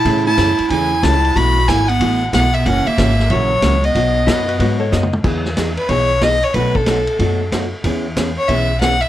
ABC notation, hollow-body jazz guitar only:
X:1
M:4/4
L:1/8
Q:"Swing" 1/4=185
K:E
V:1 name="Hollow-body jazz guitar"
[C,E,A,CG] z [C,E,A,CG] z [C,E,A,CG] z [C,E,A,CG] z | [B,,E,A,EF] z [B,,E,A,EF] z [B,,E,A,EF] z [B,,E,A,EF] z | [C,E,^A,CF] z [C,E,A,CF] z [C,E,A,CF] z [C,E,A,CF] z | [B,,F,B,DF] z [B,,F,B,DF] z [B,,F,B,DF] z [B,,F,B,DF] z |
[E,B,DG] z [E,B,DG] z [E,B,DG] z [E,B,DG] z | [B,,F,A,DF] z [B,,F,A,DF] z [B,,F,A,DF] z [B,,F,A,DF] z | [E,B,CG] z [E,B,CG] z [E,B,CG] z [E,B,CG] z |]